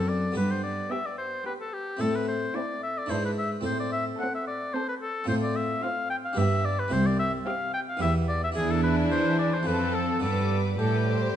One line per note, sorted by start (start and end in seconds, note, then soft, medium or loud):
0.00 0.24 F#2 soft
0.00 0.25 F#2 medium
0.00 0.22 C4 soft
0.00 0.33 C4 soft
0.00 0.33 D4 soft
0.00 0.10 A4 medium
0.00 0.23 A4 soft
0.00 0.34 A4 soft
0.00 0.22 D6 soft
0.09 0.36 D5 medium
0.32 1.95 B3 soft
0.32 1.96 G4 soft
0.32 1.97 B4 soft
0.36 0.79 G2 soft
0.36 0.80 G2 medium
0.36 0.52 B4 medium
0.51 0.63 C5 medium
0.63 0.93 D5 medium
0.91 1.32 B3 soft
0.91 1.32 G4 soft
0.91 1.07 E5 medium
0.91 1.32 D6 soft
1.06 1.17 D5 soft
1.18 1.45 C5 medium
1.46 1.87 B3 soft
1.46 1.87 G4 soft
1.46 1.52 B4 medium
1.46 1.87 D6 soft
1.60 1.75 A4 medium
1.74 2.02 G4 medium
1.97 3.05 C4 soft
1.97 3.06 E4 soft
1.97 3.06 A4 soft
1.97 2.17 A4 medium
2.01 2.44 A2 soft
2.01 2.44 A2 medium
2.16 2.28 B4 medium
2.28 2.57 C5 medium
2.55 2.96 C4 soft
2.55 2.96 E4 medium
2.55 2.82 D5 medium
2.55 2.96 A5 soft
2.83 2.99 E5 medium
2.98 3.12 D5 medium
3.06 3.61 D4 soft
3.06 3.62 E4 soft
3.06 3.63 B4 soft
3.10 3.54 G#2 medium
3.10 3.53 G#2 soft
3.10 3.51 D4 soft
3.10 3.51 E4 soft
3.10 3.24 C5 medium
3.10 3.51 B5 soft
3.25 3.31 B4 medium
3.38 3.50 E5 medium
3.61 5.23 C4 soft
3.61 5.24 A4 soft
3.61 5.24 C5 soft
3.65 4.08 A2 medium
3.65 4.08 A2 soft
3.65 3.79 C5 medium
3.80 3.92 D5 medium
3.92 4.05 E5 medium
4.20 4.61 C4 soft
4.20 4.61 A4 soft
4.20 4.33 F#5 medium
4.20 4.61 C6 soft
4.34 4.47 E5 medium
4.47 4.76 D5 medium
4.74 5.15 C4 soft
4.74 5.15 A4 medium
4.74 4.88 C5 medium
4.74 5.15 C6 medium
4.89 4.95 B4 medium
5.02 5.28 A4 medium
5.24 6.32 C4 soft
5.24 6.33 F4 soft
5.24 6.34 C5 soft
5.29 5.71 A2 soft
5.29 5.72 A2 medium
5.29 5.35 C5 medium
5.43 5.57 D5 medium
5.56 5.85 E5 medium
5.83 6.24 C4 medium
5.83 6.24 F4 medium
5.83 6.09 F5 medium
5.83 6.24 C6 medium
6.10 6.16 G5 medium
6.25 6.40 F5 medium
6.33 6.89 D4 soft
6.33 6.89 G4 soft
6.33 6.90 B4 soft
6.37 6.81 G2 medium
6.37 6.80 G2 soft
6.37 6.79 B3 medium
6.37 6.79 G4 medium
6.37 6.66 E5 medium
6.37 6.79 G5 medium
6.65 6.81 D5 medium
6.80 6.94 B4 medium
6.88 7.96 C4 soft
6.88 7.97 E4 soft
6.88 7.98 G4 soft
6.92 7.36 C2 medium
6.92 7.35 C2 soft
6.92 7.08 C5 medium
7.07 7.19 D5 medium
7.19 7.32 E5 medium
7.46 7.87 C4 medium
7.46 7.88 G4 medium
7.46 7.73 F5 medium
7.46 7.88 G5 medium
7.74 7.80 G5 medium
7.89 8.01 F5 medium
7.97 8.53 B3 soft
7.97 8.52 E4 soft
7.97 8.54 G4 soft
8.01 8.45 E2 medium
8.01 8.44 E2 soft
8.01 8.42 B3 medium
8.01 8.43 E4 medium
8.01 8.14 E5 medium
8.01 8.42 G5 medium
8.29 8.43 D5 medium
8.44 8.50 E5 medium
8.52 9.61 D4 soft
8.52 9.62 E4 soft
8.52 9.63 G#4 soft
8.56 9.08 E2 medium
8.56 9.08 E2 soft
8.56 9.63 D4 medium
8.56 9.63 E4 medium
8.56 8.72 G#4 medium
8.56 9.63 G#5 medium
8.71 8.83 A4 medium
8.83 8.96 B4 medium
9.11 9.66 E3 medium
9.11 9.63 E3 soft
9.11 9.38 C5 medium
9.39 9.55 D5 medium
9.54 9.68 C5 medium
9.63 10.21 F2 medium
9.63 10.19 C4 soft
9.63 10.22 C4 medium
9.63 10.20 F4 soft
9.63 10.23 A4 medium
9.63 9.96 B4 medium
9.63 10.23 A5 medium
9.67 10.19 F2 soft
9.95 10.22 A4 medium
10.20 10.78 G2 medium
10.20 10.75 G2 soft
10.20 10.78 G3 soft
10.20 11.36 B3 soft
10.20 11.36 D4 soft
10.20 10.58 A4 medium
10.20 10.78 B4 medium
10.20 10.78 D6 medium
10.79 11.34 A2 medium
10.79 11.31 A2 soft
10.79 11.36 G3 soft
10.79 11.36 G4 soft
10.79 10.92 A4 medium
10.79 11.36 D6 soft
10.94 11.07 B4 soft
11.07 11.35 C5 medium